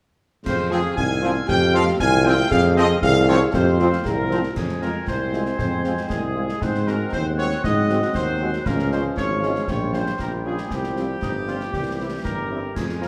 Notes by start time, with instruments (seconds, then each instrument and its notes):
0.45 tuba F2, woodwind section C4 F5, euphonium G#4, trumpet section C5, concert bass drum, snare, crash
0.71 french horn section F3 C4 F4, trombone section F3 C4, trumpet section G#4, snare
0.97 tuba C2, woodwind section C4 F5, euphonium D#4, trumpet section G#5, concert bass drum
1.22 french horn section F3 C4 F4, trombone section F3 C4, euphonium F4, snare
1.48 tuba F2, euphonium G4, trumpet section G5, concert bass drum, snare
1.74 french horn section F3 C4 F4, trombone section F3 C4, trumpet section F5, snare
1.87 snare
2.00 tuba C2, woodwind section C4 F5, euphonium F4, trumpet section G#5, concert bass drum, snare
2.25 trombone section F3 C4, french horn section F3 C4 F4, trumpet section G5, snare
2.39 snare
2.51 tuba F2, woodwind section C4 F5, euphonium G#4, trumpet section F5, concert bass drum, snare, crash
2.76 french horn section F3 C4 F4, trombone section F3 C4, trumpet section D#5, snare
3.02 tuba C2, woodwind section C4 F5, euphonium G#4, trumpet section F5, concert bass drum
3.28 trombone section F3 C4, french horn section F3 C4 F4, trumpet section C#5, snare
3.54 tuba F2, woodwind section C4 F5, euphonium G4, trumpet section C5, concert bass drum, snare
3.79 french horn section F3 C4 F4, trombone section F3 C4, euphonium F4, snare
3.93 snare
4.05 tuba C2, euphonium G#4, trumpet section A#4, concert bass drum, snare
4.30 french horn section F3 C4 F4, trombone section F3 C4, snare
4.43 snare
4.56 tuba F2, trombone section G#3 C4, woodwind section C4 G#5, trumpet section G#4, concert bass drum, snare, crash
4.69 snare
4.82 french horn section G#3 C4 F4, trumpet section A#4, snare
5.07 tuba C2, trumpet section C5, concert bass drum, snare
5.33 french horn section G#3 C4 F4, snare
5.46 snare
5.59 tuba F2, trumpet section C5, concert bass drum, snare
5.84 french horn section G#3 C4 F4, snare
5.97 snare
6.10 tuba C2, trumpet section G#4, concert bass drum, snare
6.36 french horn section G#3 C4 F4
6.49 snare
6.61 tuba G#2, woodwind section C4 F#5, trombone section C4, trumpet section C5, concert bass drum, snare
6.75 snare
6.87 french horn section G#3 C4 F#4, trumpet section A#4, snare
7.13 tuba D#2, trumpet section C5, concert bass drum, snare
7.38 french horn section G#3 C4 F#4, trumpet section C#5, snare
7.51 snare
7.64 tuba G#2, trombone section F#3, trumpet section D#5, concert bass drum, snare
7.89 french horn section G#3 C4 F#4, snare
8.02 snare
8.15 tuba D#2, trumpet section C5, concert bass drum, snare
8.41 french horn section G#3 C4 F#4
8.53 snare
8.66 tuba C#2, trombone section F3 G#3, woodwind section C#4 F5, trumpet section A#4, concert bass drum, snare, crash
8.79 snare
8.91 french horn section G#3 C#4 F4, trumpet section C5, snare
9.17 tuba G#1, trumpet section C#5, concert bass drum, snare
9.43 french horn section G#3 C#4 F4, snare
9.55 snare
9.68 tuba A#1, trombone section G3, woodwind section F4 G5, trumpet section C#5, concert bass drum, snare
9.93 french horn section G3 C#4 F4, trumpet section C5, snare
10.06 snare
10.19 tuba A#1, trumpet section A#4, concert bass drum, snare
10.45 french horn section G3 C#4 F4, trumpet section G#4
10.58 snare
10.70 tuba C2, trombone section F3, trumpet section G4, concert bass drum, snare
10.84 snare
10.96 french horn section G3 C4 F4, snare
11.22 tuba G1, woodwind section D#4, concert bass drum, snare
11.47 french horn section G3 C4 F4, woodwind section F4, snare
11.61 snare
11.72 tuba C2, trombone section E3 G3, woodwind section G4, concert bass drum, snare
11.99 french horn section G3 C4 E4
12.24 tuba G1, woodwind section G4, trumpet section A#4, concert bass drum, snare
12.50 french horn section G3 C4 E4
12.76 tuba F2, trombone section F3 G#3, woodwind section F4 G#5, trumpet section G#4, concert bass drum, snare, crash
12.89 snare
13.02 french horn section G#3 C4 F4, trumpet section A#4, snare